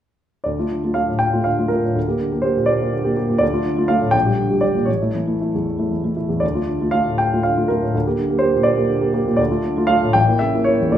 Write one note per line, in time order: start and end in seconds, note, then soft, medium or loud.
0.44 0.58 D2 soft
0.44 0.96 D5 soft
0.59 0.70 A3 soft
0.59 0.70 F4 soft
0.71 0.92 D3 soft
0.84 0.94 A3 soft
0.84 0.95 F4 soft
0.94 1.08 A3 soft
0.94 1.08 F4 soft
0.94 1.21 F5 medium
1.09 1.50 A2 soft
1.19 1.46 G5 medium
1.33 1.45 A3 soft
1.33 1.45 F4 soft
1.44 1.66 D3 soft
1.44 1.70 F5 medium
1.59 1.70 A3 soft
1.59 1.70 F4 soft
1.68 1.82 A3 soft
1.68 1.83 F4 soft
1.68 2.44 A#4 medium
1.83 1.96 A2 soft
1.95 2.08 D2 soft
2.08 2.19 A#3 soft
2.08 2.19 G4 soft
2.20 2.40 D3 soft
2.32 2.42 A#3 soft
2.32 2.43 G4 soft
2.42 2.55 A#3 soft
2.42 2.56 G4 soft
2.42 2.68 C5 medium
2.57 2.96 A#2 soft
2.66 3.37 D5 medium
2.81 2.92 A#3 soft
2.81 2.92 G4 soft
2.93 3.13 D3 soft
3.04 3.15 A#3 soft
3.04 3.15 G4 soft
3.16 3.28 A#3 soft
3.16 3.28 G4 soft
3.28 3.41 A#2 soft
3.38 3.53 D2 soft
3.38 3.88 D5 medium
3.53 3.64 A3 soft
3.53 3.65 F4 soft
3.65 3.85 D3 soft
3.77 3.88 A3 soft
3.77 3.89 F4 soft
3.88 4.01 A3 soft
3.88 4.01 F4 soft
3.88 4.13 F5 medium
4.01 4.14 A2 soft
4.11 4.25 A#1 soft
4.11 4.61 G5 medium
4.26 4.37 G3 soft
4.26 4.37 G4 soft
4.38 4.58 D3 soft
4.50 4.61 G3 soft
4.50 4.61 G4 soft
4.61 4.74 G3 soft
4.61 4.74 G4 soft
4.61 4.87 D5 medium
4.74 4.87 A#2 soft
4.85 5.00 A1 soft
4.85 5.64 C#5 medium
5.02 5.13 A3 soft
5.02 5.13 E4 soft
5.15 5.35 E3 soft
5.27 5.39 A3 soft
5.27 5.39 E4 soft
5.41 5.52 A3 soft
5.41 5.52 E4 soft
5.55 5.94 E2 soft
5.79 5.90 A3 soft
5.79 5.90 E4 soft
5.91 6.12 E3 soft
6.04 6.15 A3 soft
6.04 6.15 E4 soft
6.16 6.28 A3 soft
6.16 6.28 E4 soft
6.29 6.42 E2 soft
6.40 6.55 D2 soft
6.40 6.93 D5 medium
6.55 6.67 A3 soft
6.55 6.67 F4 soft
6.68 6.89 D3 soft
6.81 6.92 A3 soft
6.81 6.92 F4 soft
6.91 7.06 A3 soft
6.91 7.06 F4 soft
6.91 7.19 F5 medium
7.08 7.48 A2 soft
7.18 7.44 G5 medium
7.33 7.44 A3 soft
7.33 7.45 F4 soft
7.43 7.65 D3 soft
7.43 7.69 F5 medium
7.57 7.69 A3 soft
7.57 7.69 F4 soft
7.68 7.81 A3 soft
7.68 7.81 F4 soft
7.68 8.42 A#4 medium
7.82 7.94 A2 soft
7.95 8.06 D2 soft
8.07 8.17 A#3 soft
8.07 8.18 G4 soft
8.19 8.38 D3 soft
8.29 8.39 A#3 soft
8.29 8.40 G4 soft
8.39 8.52 A#3 soft
8.39 8.53 G4 soft
8.39 8.65 C5 medium
8.54 8.93 A#2 soft
8.63 9.35 D5 medium
8.76 8.88 A#3 soft
8.76 8.88 G4 soft
8.89 9.09 D3 soft
9.01 9.12 A#3 soft
9.01 9.13 G4 soft
9.14 9.25 A#3 soft
9.14 9.25 G4 soft
9.26 9.38 A#2 soft
9.37 9.51 D2 soft
9.37 9.88 D5 medium
9.50 9.62 A3 soft
9.50 9.62 F4 soft
9.64 9.84 D3 soft
9.77 9.87 A3 soft
9.77 9.88 F4 soft
9.87 10.01 A3 soft
9.87 10.01 F4 soft
9.87 10.14 F5 medium
10.03 10.15 A2 soft
10.13 10.27 A1 soft
10.13 10.40 G5 medium
10.28 10.39 A#3 soft
10.28 10.40 E4 soft
10.39 10.62 C#3 soft
10.39 10.66 E5 medium
10.54 10.65 A#3 soft
10.54 10.66 E4 soft
10.64 10.79 A#3 soft
10.64 10.79 E4 soft
10.64 10.93 C#5 medium
10.81 10.95 E2 soft
10.89 10.98 D2 soft
10.89 10.98 D3 soft
10.89 10.98 A3 soft
10.89 10.98 F4 soft
10.89 10.98 D5 medium